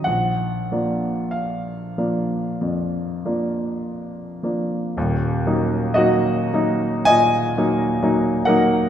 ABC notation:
X:1
M:4/4
L:1/8
Q:1/4=53
K:Bbphr
V:1 name="Grand piano"
g2 f4- f z | z2 [Ge]2 [ea]3 [Bg] |]
V:2 name="Grand piano"
B,,, [F,B,=D]2 [F,B,D] F,, [F,B,D]2 [F,B,D] | [E,,,E,,] [G,B,E] [G,B,E] [G,B,E] B,, [G,B,E] [G,B,E] [G,B,E] |]